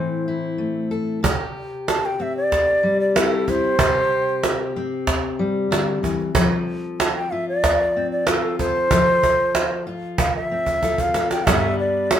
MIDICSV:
0, 0, Header, 1, 4, 480
1, 0, Start_track
1, 0, Key_signature, 0, "major"
1, 0, Tempo, 639659
1, 924, Time_signature, 4, 2, 24, 8
1, 9153, End_track
2, 0, Start_track
2, 0, Title_t, "Bansuri"
2, 0, Program_c, 0, 73
2, 0, Note_on_c, 0, 72, 78
2, 685, Note_off_c, 0, 72, 0
2, 1414, Note_on_c, 0, 81, 85
2, 1541, Note_on_c, 0, 79, 76
2, 1552, Note_off_c, 0, 81, 0
2, 1664, Note_on_c, 0, 76, 72
2, 1675, Note_off_c, 0, 79, 0
2, 1767, Note_off_c, 0, 76, 0
2, 1777, Note_on_c, 0, 74, 94
2, 2238, Note_off_c, 0, 74, 0
2, 2254, Note_on_c, 0, 74, 75
2, 2380, Note_on_c, 0, 69, 75
2, 2391, Note_off_c, 0, 74, 0
2, 2620, Note_on_c, 0, 72, 100
2, 2632, Note_off_c, 0, 69, 0
2, 3545, Note_off_c, 0, 72, 0
2, 5254, Note_on_c, 0, 81, 75
2, 5361, Note_off_c, 0, 81, 0
2, 5372, Note_on_c, 0, 79, 83
2, 5485, Note_on_c, 0, 76, 84
2, 5496, Note_off_c, 0, 79, 0
2, 5597, Note_off_c, 0, 76, 0
2, 5618, Note_on_c, 0, 74, 101
2, 6077, Note_off_c, 0, 74, 0
2, 6092, Note_on_c, 0, 74, 79
2, 6219, Note_on_c, 0, 69, 70
2, 6230, Note_off_c, 0, 74, 0
2, 6443, Note_off_c, 0, 69, 0
2, 6448, Note_on_c, 0, 72, 107
2, 7376, Note_off_c, 0, 72, 0
2, 7649, Note_on_c, 0, 77, 76
2, 7758, Note_off_c, 0, 77, 0
2, 7774, Note_on_c, 0, 76, 89
2, 8257, Note_on_c, 0, 77, 90
2, 8268, Note_off_c, 0, 76, 0
2, 8483, Note_off_c, 0, 77, 0
2, 8496, Note_on_c, 0, 79, 78
2, 8608, Note_on_c, 0, 76, 85
2, 8619, Note_off_c, 0, 79, 0
2, 8839, Note_off_c, 0, 76, 0
2, 8850, Note_on_c, 0, 74, 71
2, 9080, Note_off_c, 0, 74, 0
2, 9099, Note_on_c, 0, 74, 82
2, 9153, Note_off_c, 0, 74, 0
2, 9153, End_track
3, 0, Start_track
3, 0, Title_t, "Steel-string acoustic guitar"
3, 0, Program_c, 1, 25
3, 0, Note_on_c, 1, 45, 66
3, 0, Note_on_c, 1, 52, 60
3, 0, Note_on_c, 1, 57, 48
3, 0, Note_on_c, 1, 60, 43
3, 0, Note_on_c, 1, 64, 50
3, 0, Note_on_c, 1, 69, 57
3, 199, Note_off_c, 1, 64, 0
3, 208, Note_on_c, 1, 64, 48
3, 428, Note_off_c, 1, 57, 0
3, 437, Note_on_c, 1, 57, 46
3, 674, Note_off_c, 1, 69, 0
3, 683, Note_on_c, 1, 69, 56
3, 892, Note_off_c, 1, 57, 0
3, 894, Note_off_c, 1, 45, 0
3, 895, Note_off_c, 1, 69, 0
3, 897, Note_off_c, 1, 52, 0
3, 899, Note_off_c, 1, 60, 0
3, 899, Note_off_c, 1, 64, 0
3, 921, Note_on_c, 1, 48, 68
3, 927, Note_on_c, 1, 67, 61
3, 1648, Note_on_c, 1, 60, 49
3, 2125, Note_on_c, 1, 55, 55
3, 2364, Note_off_c, 1, 60, 0
3, 2367, Note_on_c, 1, 60, 47
3, 2368, Note_off_c, 1, 67, 0
3, 2371, Note_on_c, 1, 64, 46
3, 2378, Note_on_c, 1, 67, 55
3, 2603, Note_off_c, 1, 64, 0
3, 2612, Note_on_c, 1, 64, 57
3, 2817, Note_off_c, 1, 55, 0
3, 2821, Note_off_c, 1, 64, 0
3, 2833, Note_off_c, 1, 48, 0
3, 2841, Note_off_c, 1, 67, 0
3, 2842, Note_on_c, 1, 48, 72
3, 2850, Note_on_c, 1, 67, 68
3, 3572, Note_off_c, 1, 60, 0
3, 3575, Note_on_c, 1, 60, 54
3, 4046, Note_on_c, 1, 55, 58
3, 4279, Note_off_c, 1, 48, 0
3, 4282, Note_on_c, 1, 50, 55
3, 4521, Note_off_c, 1, 50, 0
3, 4524, Note_on_c, 1, 52, 59
3, 4737, Note_off_c, 1, 55, 0
3, 4762, Note_on_c, 1, 53, 73
3, 4765, Note_off_c, 1, 52, 0
3, 4767, Note_off_c, 1, 67, 0
3, 4770, Note_on_c, 1, 69, 59
3, 5494, Note_on_c, 1, 65, 50
3, 5973, Note_off_c, 1, 60, 0
3, 5976, Note_on_c, 1, 60, 53
3, 6202, Note_off_c, 1, 65, 0
3, 6211, Note_on_c, 1, 65, 55
3, 6442, Note_off_c, 1, 69, 0
3, 6451, Note_on_c, 1, 69, 64
3, 6659, Note_off_c, 1, 65, 0
3, 6659, Note_off_c, 1, 69, 0
3, 6661, Note_off_c, 1, 60, 0
3, 6677, Note_off_c, 1, 53, 0
3, 6686, Note_on_c, 1, 53, 73
3, 6693, Note_on_c, 1, 69, 67
3, 7404, Note_on_c, 1, 65, 50
3, 7889, Note_on_c, 1, 60, 52
3, 8124, Note_off_c, 1, 65, 0
3, 8127, Note_off_c, 1, 69, 0
3, 8131, Note_on_c, 1, 65, 48
3, 8135, Note_on_c, 1, 69, 54
3, 8355, Note_off_c, 1, 69, 0
3, 8364, Note_on_c, 1, 69, 65
3, 8575, Note_off_c, 1, 69, 0
3, 8577, Note_off_c, 1, 60, 0
3, 8578, Note_off_c, 1, 65, 0
3, 8602, Note_on_c, 1, 43, 74
3, 8604, Note_off_c, 1, 53, 0
3, 8610, Note_on_c, 1, 55, 64
3, 8615, Note_on_c, 1, 59, 55
3, 8620, Note_on_c, 1, 62, 59
3, 8625, Note_on_c, 1, 71, 71
3, 9153, Note_off_c, 1, 43, 0
3, 9153, Note_off_c, 1, 55, 0
3, 9153, Note_off_c, 1, 59, 0
3, 9153, Note_off_c, 1, 62, 0
3, 9153, Note_off_c, 1, 71, 0
3, 9153, End_track
4, 0, Start_track
4, 0, Title_t, "Cajon"
4, 930, Note_on_c, 9, 36, 88
4, 1005, Note_off_c, 9, 36, 0
4, 1053, Note_on_c, 9, 38, 23
4, 1128, Note_off_c, 9, 38, 0
4, 1412, Note_on_c, 9, 38, 70
4, 1487, Note_off_c, 9, 38, 0
4, 1652, Note_on_c, 9, 38, 21
4, 1727, Note_off_c, 9, 38, 0
4, 1892, Note_on_c, 9, 36, 70
4, 1892, Note_on_c, 9, 38, 25
4, 1967, Note_off_c, 9, 36, 0
4, 1967, Note_off_c, 9, 38, 0
4, 2371, Note_on_c, 9, 38, 81
4, 2446, Note_off_c, 9, 38, 0
4, 2610, Note_on_c, 9, 36, 51
4, 2685, Note_off_c, 9, 36, 0
4, 2734, Note_on_c, 9, 38, 23
4, 2809, Note_off_c, 9, 38, 0
4, 2843, Note_on_c, 9, 36, 93
4, 2918, Note_off_c, 9, 36, 0
4, 3328, Note_on_c, 9, 38, 80
4, 3403, Note_off_c, 9, 38, 0
4, 3571, Note_on_c, 9, 38, 23
4, 3646, Note_off_c, 9, 38, 0
4, 3807, Note_on_c, 9, 36, 91
4, 3807, Note_on_c, 9, 38, 24
4, 3882, Note_off_c, 9, 36, 0
4, 3882, Note_off_c, 9, 38, 0
4, 4293, Note_on_c, 9, 38, 76
4, 4368, Note_off_c, 9, 38, 0
4, 4530, Note_on_c, 9, 36, 54
4, 4605, Note_off_c, 9, 36, 0
4, 4649, Note_on_c, 9, 38, 25
4, 4724, Note_off_c, 9, 38, 0
4, 4764, Note_on_c, 9, 36, 99
4, 4839, Note_off_c, 9, 36, 0
4, 4886, Note_on_c, 9, 38, 24
4, 4961, Note_off_c, 9, 38, 0
4, 5252, Note_on_c, 9, 38, 83
4, 5327, Note_off_c, 9, 38, 0
4, 5493, Note_on_c, 9, 38, 24
4, 5568, Note_off_c, 9, 38, 0
4, 5731, Note_on_c, 9, 36, 91
4, 5731, Note_on_c, 9, 38, 25
4, 5806, Note_off_c, 9, 36, 0
4, 5806, Note_off_c, 9, 38, 0
4, 6203, Note_on_c, 9, 38, 82
4, 6278, Note_off_c, 9, 38, 0
4, 6449, Note_on_c, 9, 36, 58
4, 6524, Note_off_c, 9, 36, 0
4, 6570, Note_on_c, 9, 38, 22
4, 6645, Note_off_c, 9, 38, 0
4, 6684, Note_on_c, 9, 36, 93
4, 6759, Note_off_c, 9, 36, 0
4, 6929, Note_on_c, 9, 36, 65
4, 7004, Note_off_c, 9, 36, 0
4, 7164, Note_on_c, 9, 38, 84
4, 7239, Note_off_c, 9, 38, 0
4, 7405, Note_on_c, 9, 38, 26
4, 7480, Note_off_c, 9, 38, 0
4, 7523, Note_on_c, 9, 38, 24
4, 7598, Note_off_c, 9, 38, 0
4, 7641, Note_on_c, 9, 36, 82
4, 7716, Note_off_c, 9, 36, 0
4, 8003, Note_on_c, 9, 36, 52
4, 8078, Note_off_c, 9, 36, 0
4, 8124, Note_on_c, 9, 36, 55
4, 8199, Note_off_c, 9, 36, 0
4, 8241, Note_on_c, 9, 36, 59
4, 8316, Note_off_c, 9, 36, 0
4, 8362, Note_on_c, 9, 38, 67
4, 8437, Note_off_c, 9, 38, 0
4, 8485, Note_on_c, 9, 38, 69
4, 8560, Note_off_c, 9, 38, 0
4, 8607, Note_on_c, 9, 36, 100
4, 8682, Note_off_c, 9, 36, 0
4, 8724, Note_on_c, 9, 38, 27
4, 8799, Note_off_c, 9, 38, 0
4, 9085, Note_on_c, 9, 38, 83
4, 9153, Note_off_c, 9, 38, 0
4, 9153, End_track
0, 0, End_of_file